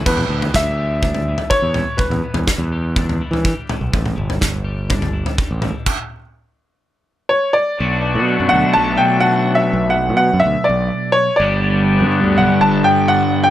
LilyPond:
<<
  \new Staff \with { instrumentName = "Upright piano" } { \time 4/4 \key e \minor \tempo 4 = 124 b'4 e''2 cis''4 | b'2.~ b'8 r8 | r1 | r2. cis''8 d''8~ |
d''4 r8 fis''8 a''8 g''8 fis''8. e''16~ | e''8 fis''8 fis''8 e''8 d''4 cis''8 d''8~ | d''4 r8 fis''8 a''8 g''8 fis''8. g''16 | }
  \new Staff \with { instrumentName = "Overdriven electric guitar" } { \clef bass \time 4/4 \key e \minor r1 | r1 | r1 | r1 |
<b, fis b d'>1~ | <b, fis b d'>2.~ <b, fis b d'>8 <g, d g b d'>8~ | <g, d g b d'>1 | }
  \new Staff \with { instrumentName = "Clean electric guitar" } { \clef bass \time 4/4 \key e \minor r8 b,4 g8 d'8 e8 g8 e8 | e,8 b,8 e8 g8 d'8 e8 g8 e8 | a,8 e8 e8 g8 d'8 e8 g8 e8 | r1 |
<b, fis a d' fis'>1~ | <b, fis a d' fis'>2.~ <b, fis a d' fis'>8 <g, d g b d' g'>8~ | <g, d g b d' g'>1 | }
  \new Staff \with { instrumentName = "Fingered electric bass" } { \clef bass \time 4/4 \key e \minor e,8 d,8 d,2 r16 e,8 r16 | r16 e,16 r16 e,16 r16 e,4. e8 r8 b,,16 | a,,8 g,,8 g,,2 r16 a,,8 r16 | r1 |
b,,8. b,8 fis,16 d,16 r16 b,,8 r4. | b,,8. b,8 fis,16 d,16 r16 b,,8 r4 g,,8~ | g,,8. g,8 d,16 b,,16 r16 g,,8 r4. | }
  \new DrumStaff \with { instrumentName = "Drums" } \drummode { \time 4/4 <cymc bd tomfh>16 toml8 tomfh16 <bd sn>4 <bd tomfh>16 tomfh8 tomfh16 bd8 <tomfh toml>8 | <bd tomfh>16 toml8 tomfh16 <bd sn>4 <bd tomfh>16 tomfh8 tomfh16 bd8 <tomfh toml>8 | <bd tomfh>16 toml8 tomfh16 <bd sn>4 <bd tomfh>16 tomfh8 tomfh16 bd8 <tomfh toml>8 | <cymc bd>4 r4 r4 r4 |
r4 r4 r4 r4 | r4 r4 r4 r4 | r4 r4 r4 r4 | }
>>